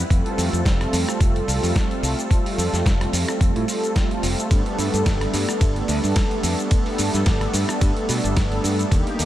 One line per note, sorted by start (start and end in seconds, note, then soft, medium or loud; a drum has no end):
0.10 0.20 F2 medium
0.10 1.45 G3 loud
0.10 1.45 A3 medium
0.10 1.45 C4 medium
0.10 1.45 F4 medium
0.10 1.46 A4 loud
0.10 kick loud
0.10 closed hi-hat medium
0.10 cabasa soft
0.26 closed hi-hat soft
0.38 0.48 F2 medium
0.38 open hi-hat loud
0.38 cabasa medium
0.53 0.61 F2 medium
0.53 closed hi-hat soft
0.53 cabasa soft
0.65 0.85 F1 medium
0.65 kick loud
0.65 snare loud
0.65 closed hi-hat medium
0.65 cabasa soft
0.81 cross-stick medium
0.81 closed hi-hat soft
0.93 1.03 F2 medium
0.93 open hi-hat loud
0.93 cabasa medium
1.09 cross-stick medium
1.09 closed hi-hat soft
1.09 cabasa soft
1.20 1.40 F1 loud
1.20 kick loud
1.20 closed hi-hat loud
1.20 cabasa soft
1.36 closed hi-hat soft
1.47 1.58 C2 loud
1.47 2.27 G3 medium
1.47 2.28 A3 medium
1.47 2.28 C4 medium
1.47 2.28 F4 medium
1.47 2.28 A4 loud
1.47 open hi-hat loud
1.47 cabasa medium
1.63 1.71 F2 medium
1.63 open hi-hat medium
1.63 cabasa soft
1.76 kick loud
1.76 snare loud
1.76 closed hi-hat medium
1.76 cabasa soft
1.91 closed hi-hat soft
2.03 2.13 C2 medium
2.03 open hi-hat loud
2.03 cabasa medium
2.19 closed hi-hat soft
2.19 cabasa soft
2.30 3.65 G3 loud
2.30 3.65 A3 medium
2.30 3.65 C4 medium
2.30 3.66 F4 medium
2.30 3.66 A4 loud
2.30 kick loud
2.30 closed hi-hat medium
2.30 cabasa soft
2.46 open hi-hat medium
2.58 2.68 F2 medium
2.58 open hi-hat loud
2.58 cabasa medium
2.73 2.81 F2 medium
2.73 snare soft
2.73 closed hi-hat soft
2.73 cabasa soft
2.86 3.05 F1 medium
2.86 kick loud
2.86 snare loud
2.86 closed hi-hat medium
2.86 cabasa soft
3.01 cross-stick medium
3.01 closed hi-hat soft
3.13 3.23 F2 loud
3.13 open hi-hat loud
3.13 cabasa medium
3.29 cross-stick medium
3.29 closed hi-hat soft
3.29 cabasa soft
3.41 3.51 F2 medium
3.41 kick loud
3.41 closed hi-hat medium
3.41 cabasa soft
3.56 3.64 A2 medium
3.56 closed hi-hat soft
3.67 4.48 G3 medium
3.67 4.48 A3 medium
3.67 4.48 C4 medium
3.67 4.48 F4 medium
3.67 4.49 A4 medium
3.67 open hi-hat loud
3.67 cabasa medium
3.83 closed hi-hat soft
3.83 cabasa soft
3.96 kick loud
3.96 snare loud
3.96 closed hi-hat medium
3.96 cabasa soft
4.11 closed hi-hat soft
4.23 4.33 F1 loud
4.23 open hi-hat loud
4.23 cabasa medium
4.39 closed hi-hat soft
4.39 cabasa soft
4.50 4.61 G2 medium
4.50 5.85 G3 loud
4.50 5.85 A3 loud
4.50 5.86 B3 loud
4.50 5.86 D4 medium
4.50 5.86 A4 loud
4.50 kick loud
4.50 closed hi-hat medium
4.50 ride medium
4.50 cabasa soft
4.66 closed hi-hat soft
4.78 4.88 G2 medium
4.78 open hi-hat loud
4.78 cabasa medium
4.94 5.02 G2 medium
4.94 closed hi-hat soft
4.94 cabasa soft
5.06 5.25 G1 medium
5.06 kick loud
5.06 snare loud
5.06 closed hi-hat medium
5.06 ride medium
5.06 cabasa soft
5.21 cross-stick medium
5.21 closed hi-hat soft
5.34 5.44 G2 loud
5.34 open hi-hat loud
5.34 cabasa medium
5.49 cross-stick medium
5.49 closed hi-hat soft
5.49 cabasa soft
5.61 5.80 G1 loud
5.61 kick loud
5.61 closed hi-hat loud
5.61 ride medium
5.61 cabasa soft
5.76 closed hi-hat soft
5.88 5.98 D2 loud
5.88 6.68 G3 medium
5.88 6.68 A3 medium
5.88 6.68 B3 medium
5.88 6.69 D4 medium
5.88 6.69 A4 loud
5.88 open hi-hat loud
5.88 cabasa medium
6.04 6.12 G2 medium
6.04 open hi-hat medium
6.04 cabasa soft
6.16 kick loud
6.16 snare loud
6.16 closed hi-hat medium
6.16 ride medium
6.16 cabasa soft
6.31 closed hi-hat soft
6.43 6.53 F2 medium
6.43 open hi-hat loud
6.43 cabasa medium
6.59 closed hi-hat soft
6.59 cabasa soft
6.70 8.05 G3 loud
6.70 8.06 A3 medium
6.70 8.06 B3 medium
6.70 8.06 D4 medium
6.70 8.06 A4 loud
6.70 kick loud
6.70 closed hi-hat medium
6.70 ride medium
6.70 cabasa soft
6.86 open hi-hat medium
6.98 7.09 G2 medium
6.98 open hi-hat loud
6.98 cabasa medium
7.14 7.22 G2 medium
7.14 snare soft
7.14 closed hi-hat soft
7.14 cabasa medium
7.26 7.45 G1 medium
7.26 kick loud
7.26 snare loud
7.26 closed hi-hat medium
7.26 ride medium
7.26 cabasa soft
7.41 cross-stick medium
7.41 closed hi-hat soft
7.54 7.64 G2 medium
7.54 open hi-hat loud
7.54 cabasa medium
7.69 cross-stick medium
7.69 closed hi-hat soft
7.69 cabasa soft
7.81 7.91 G2 loud
7.81 kick loud
7.81 closed hi-hat loud
7.81 ride medium
7.81 cabasa soft
7.96 closed hi-hat soft
8.08 8.19 B2 loud
8.08 8.88 G3 medium
8.08 8.88 A3 medium
8.08 8.88 B3 medium
8.08 8.89 D4 medium
8.08 8.89 A4 loud
8.08 open hi-hat loud
8.08 cabasa medium
8.24 8.57 G1 loud
8.24 closed hi-hat soft
8.24 cabasa soft
8.36 kick loud
8.36 snare loud
8.36 closed hi-hat medium
8.36 ride medium
8.36 cabasa soft
8.52 closed hi-hat soft
8.64 8.83 G2 medium
8.64 open hi-hat loud
8.64 cabasa medium
8.79 closed hi-hat soft
8.79 cabasa soft
8.91 9.01 D#2 medium
8.91 9.25 A#3 loud
8.91 9.25 D#4 medium
8.91 9.25 G4 loud
8.91 kick loud
8.91 closed hi-hat medium
8.91 ride medium
8.91 cabasa soft
9.07 closed hi-hat soft
9.19 9.25 D#2 medium
9.19 open hi-hat loud
9.19 cabasa medium